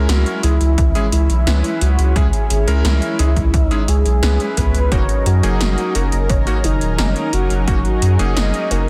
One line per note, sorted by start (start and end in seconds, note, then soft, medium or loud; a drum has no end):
0.00 0.39 G#3 medium
0.00 4.88 G#3 medium
0.00 0.39 C#4 medium
0.00 4.88 C#4 medium
0.00 0.39 E4 medium
0.00 4.88 E4 medium
0.00 0.10 G#4 loud
0.00 0.39 A#4 loud
0.09 0.24 C#2 loud
0.09 0.43 F#4 medium
0.09 snare loud
0.09 closed hi-hat medium
0.26 closed hi-hat soft
0.43 0.59 C#2 medium
0.43 0.53 G#3 medium
0.43 0.53 C#4 medium
0.43 1.08 E4 medium
0.43 0.53 E4 medium
0.43 0.53 G#4 medium
0.43 closed hi-hat loud
0.61 0.76 C#2 medium
0.61 closed hi-hat soft
0.78 0.93 C#2 medium
0.78 kick loud
0.78 closed hi-hat medium
0.95 1.05 G#3 medium
0.95 1.05 C#4 medium
0.95 1.05 E4 medium
0.95 1.05 G#4 loud
0.95 closed hi-hat soft
1.12 1.28 C#2 medium
1.12 1.83 E4 loud
1.12 closed hi-hat loud
1.30 1.45 B1 medium
1.30 closed hi-hat soft
1.47 1.62 C#2 loud
1.47 2.12 G#3 medium
1.47 2.12 C#4 medium
1.47 2.12 E4 medium
1.47 2.12 B4 medium
1.47 snare loud
1.47 closed hi-hat medium
1.64 closed hi-hat soft
1.81 1.97 C#2 medium
1.81 2.17 F#4 medium
1.81 closed hi-hat medium
1.99 2.14 C#2 medium
1.99 closed hi-hat soft
2.16 2.31 C#2 loud
2.16 2.25 G#3 medium
2.16 2.25 C#4 medium
2.16 2.25 E4 medium
2.16 2.86 G#4 loud
2.16 2.25 G#4 medium
2.16 kick loud
2.16 closed hi-hat medium
2.33 closed hi-hat soft
2.50 2.66 G#1 medium
2.50 closed hi-hat medium
2.68 2.83 C#2 medium
2.68 3.15 G#3 medium
2.68 3.15 C#4 medium
2.68 3.15 E4 medium
2.68 3.15 A#4 loud
2.68 closed hi-hat soft
2.85 3.00 C#2 loud
2.85 3.19 E4 medium
2.85 snare loud
2.85 closed hi-hat medium
3.02 closed hi-hat soft
3.19 3.35 C#2 medium
3.19 3.29 G#3 medium
3.19 3.29 C#4 medium
3.19 3.65 E4 loud
3.19 3.29 E4 medium
3.19 3.29 G#4 medium
3.19 closed hi-hat medium
3.36 3.52 C#2 medium
3.36 kick medium
3.36 closed hi-hat soft
3.54 3.69 C#2 loud
3.54 kick loud
3.54 closed hi-hat medium
3.65 3.90 D#4 loud
3.71 3.81 G#3 medium
3.71 3.81 C#4 medium
3.71 3.81 E4 medium
3.71 3.81 G#4 loud
3.71 closed hi-hat soft
3.88 4.04 C#2 medium
3.88 4.59 G#4 loud
3.88 closed hi-hat loud
4.05 4.21 B1 medium
4.05 closed hi-hat soft
4.23 4.38 C#2 loud
4.23 4.88 G#3 medium
4.23 4.88 C#4 medium
4.23 4.88 E4 medium
4.23 4.88 B4 medium
4.23 snare loud
4.23 closed hi-hat medium
4.40 closed hi-hat soft
4.57 4.73 C#2 medium
4.57 4.93 B4 loud
4.57 kick medium
4.57 closed hi-hat medium
4.74 4.90 C#2 medium
4.74 closed hi-hat soft
4.92 5.07 F#1 loud
4.92 8.89 F#3 medium
4.92 5.01 A#3 medium
4.92 8.89 C#4 medium
4.92 5.01 C#4 medium
4.92 8.89 D#4 medium
4.92 5.01 D#4 medium
4.92 5.01 F#4 loud
4.92 8.89 G#4 medium
4.92 8.89 A#4 medium
4.92 5.28 C#5 loud
4.92 kick loud
4.92 closed hi-hat medium
5.09 closed hi-hat soft
5.26 5.41 F#2 medium
5.26 5.96 F#4 loud
5.26 closed hi-hat medium
5.43 5.59 F#1 medium
5.43 5.91 A#3 medium
5.43 5.91 C#4 medium
5.43 5.91 D#4 medium
5.43 5.91 G#4 loud
5.43 closed hi-hat soft
5.61 5.76 F#1 loud
5.61 snare loud
5.61 closed hi-hat medium
5.78 closed hi-hat soft
5.95 6.10 F#1 medium
5.95 6.05 A#3 medium
5.95 6.05 C#4 medium
5.95 6.05 D#4 medium
5.95 6.05 F#4 medium
5.95 6.31 A#4 loud
5.95 closed hi-hat medium
6.12 6.28 F#1 medium
6.12 closed hi-hat soft
6.29 6.45 F#1 loud
6.29 6.66 C#5 loud
6.29 kick loud
6.29 closed hi-hat medium
6.47 6.56 A#3 medium
6.47 6.56 C#4 medium
6.47 6.56 D#4 medium
6.47 6.56 F#4 loud
6.47 closed hi-hat soft
6.64 6.79 F#1 medium
6.64 7.34 D#4 loud
6.64 closed hi-hat medium
6.81 6.97 D#1 medium
6.81 closed hi-hat soft
6.99 7.14 F#1 loud
6.99 7.63 A#3 medium
6.99 7.63 C#4 medium
6.99 7.63 D#4 medium
6.99 7.63 A#4 medium
6.99 snare loud
6.99 closed hi-hat medium
7.16 closed hi-hat soft
7.33 7.48 F#1 medium
7.33 7.67 F#4 medium
7.33 closed hi-hat medium
7.50 7.66 F#1 medium
7.50 closed hi-hat soft
7.67 7.83 F#1 loud
7.67 7.77 A#3 medium
7.67 7.77 C#4 medium
7.67 7.77 D#4 medium
7.67 8.32 F#4 loud
7.67 7.77 F#4 loud
7.67 kick loud
7.67 closed hi-hat medium
7.85 closed hi-hat soft
8.02 8.17 F#2 medium
8.02 closed hi-hat medium
8.19 8.35 F#1 medium
8.19 8.67 A#3 medium
8.19 8.67 C#4 medium
8.19 8.67 D#4 medium
8.19 8.67 G#4 loud
8.19 closed hi-hat soft
8.36 8.52 F#1 loud
8.36 8.72 D#5 loud
8.36 snare loud
8.36 closed hi-hat medium
8.54 closed hi-hat soft
8.71 8.86 F#1 medium
8.71 8.81 A#3 medium
8.71 8.81 C#4 medium
8.71 8.81 D#4 medium
8.71 8.81 F#4 medium
8.71 8.89 A#4 loud
8.71 closed hi-hat medium